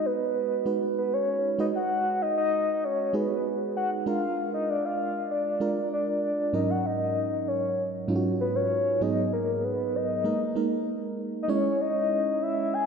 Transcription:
Already playing: fm electric piano G#3 D#4 F#4 B4
0.06 soft synth lead B4
0.66 fm electric piano G#3 D#4 F#4 B4
0.98 soft synth lead B4
1.13 soft synth lead C#5
1.59 fm electric piano G#3 D#4 F#4 B4, soft synth lead D#5
1.76 soft synth lead F#5
2.22 soft synth lead D#5
2.38 soft synth lead D#5
2.84 soft synth lead C#5
3.13 fm electric piano G#3 D#4 F#4 G#4, soft synth lead B4
3.77 soft synth lead F#5
4.06 fm electric piano G#3 D4 F4 A#4, soft synth lead F5
4.54 soft synth lead D#5
4.70 soft synth lead D5
4.85 soft synth lead F5
5.31 soft synth lead D5
5.60 fm electric piano G#3 D4 F4 A#4
5.93 soft synth lead D5
6.09 soft synth lead D5
6.53 fm electric piano G#2 F#3 C#4 D#4 A#4, soft synth lead D#5
6.70 soft synth lead F#5
6.86 soft synth lead D#5
7.48 soft synth lead C#5
8.08 fm electric piano G#2 F#3 C#4 D#4 F4
8.16 fm electric piano F#4
8.41 soft synth lead B4
8.55 soft synth lead C#5
9.01 fm electric piano G#2 F#3 B3 D#4 G#4, soft synth lead D#5
9.33 soft synth lead A#4
9.64 soft synth lead B4
9.96 soft synth lead D#5
10.24 fm electric piano G#3 A#3 D#4 A#4
10.55 fm electric piano G#3 A#3 D#4 A#4
11.43 soft synth lead D#5
11.48 fm electric piano G#3 C#4 E4 C#5, soft synth lead C#5
11.81 soft synth lead D#5
12.42 soft synth lead E5
12.74 soft synth lead G#5

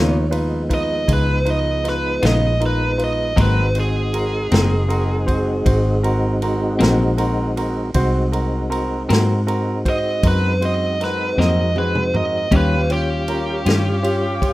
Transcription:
Already playing: fingered electric bass D#2, clean electric guitar C#3 B3 D#4 F4, tonewheel organ F3 G#3 B3 D#4, grand piano D#4 F4 B4, lead electric guitar C#5
0.31 grand piano D#4 F4 B4, ride
0.69 grand piano D#4 F4 B4, kick, ride
0.74 lead electric guitar D#5
1.07 fingered electric bass C#2, grand piano D#4 F4 G#4, kick, ride
1.13 lead electric guitar B4
1.45 grand piano D#4 F4 B4, ride
1.50 lead electric guitar D#5
1.84 grand piano D#4 F4 B4, snare, ride
1.89 lead electric guitar B4
2.22 fingered electric bass A#1, clean electric guitar C#3 B3 D#4 F4, grand piano D#4 F4 B4, lead electric guitar D#5, snare, ride
2.60 grand piano D#4 F4 A#4, ride
2.66 lead electric guitar B4
2.98 grand piano D#4 F4 B4, ride
3.04 lead electric guitar D#5
3.36 fingered electric bass G#1, clean electric guitar G#2 F#3 A#3 C4, tonewheel organ G#3 C4 D#4 F#4, grand piano C4 F#4 A#4, kick, ride
3.41 lead electric guitar B4
3.75 grand piano C4 F#4 C5, ride
3.80 lead electric guitar G#4
4.13 grand piano C4 F#4 A#4, ride
4.51 fingered electric bass F#1, clean electric guitar G#2 F#3 A#3 C4, grand piano C4 F#4 A#4, snare, ride
4.88 grand piano C4 F#4 A#4, ride
5.26 grand piano C4 F#4 C5, kick, ride
5.65 fingered electric bass G#1, grand piano C4 F#4 C5, kick, ride
6.03 grand piano C4 F#4 A#4, ride
6.42 grand piano C4 F#4 A#4, ride
6.79 fingered electric bass A#1, clean electric guitar G#2 F#3 A#3 C4, grand piano C4 F#4 A#4, ride
6.83 snare
7.18 grand piano C4 F#4 A#4, ride
7.57 grand piano C4 F#4 A#4, ride
7.94 fingered electric bass C2, tonewheel organ G#3 C4 D#4 F#4, grand piano C4 F#4 C5, kick, ride
8.31 grand piano C4 F#4 A#4, ride
8.70 grand piano C4 F#4 A#4, ride
9.09 fingered electric bass G#2, clean electric guitar G#2 F#3 A#3 C4, grand piano C4 F#4 A#4, ride
9.13 snare
9.47 grand piano C4 F#4 A#4, ride
9.85 grand piano C4 F#4 C5, kick, ride
9.89 lead electric guitar D#5
10.23 fingered electric bass F#2, grand piano C4 F#4 A#4, kick, ride
10.28 lead electric guitar B4
10.61 grand piano C4 F#4 C5, ride
10.65 lead electric guitar D#5
11.00 grand piano C4 F#4 A#4, lead electric guitar B4, snare, ride
11.38 fingered electric bass F2, clean electric guitar G#2 F#3 A#3 C4, grand piano C4 F#4 A#4, lead electric guitar D#5, snare
11.76 grand piano C4 F#4 G#4, lead electric guitar B4, high tom
11.95 mid tom
12.14 grand piano C4 F#4 A#4, lead electric guitar D#5, mid tom
12.51 fingered electric bass D#2, clean electric guitar D#3 G3 C#4 F4, tonewheel organ G3 C#4 F4 G4, grand piano C#4 F4 G4, saxophone section G4 C#5 F5, kick, ride
12.56 lead electric guitar B4
12.90 grand piano C#4 F4 G4, lead electric guitar G4, ride
13.28 grand piano C#4 F4 A#4, ride
13.65 fingered electric bass G2, clean electric guitar D#3 G3 C#4 F4, grand piano C#4 F4 G4, snare, ride
14.03 grand piano C#4 F4 G4, ride
14.41 grand piano C#4 F4 G4, kick, ride

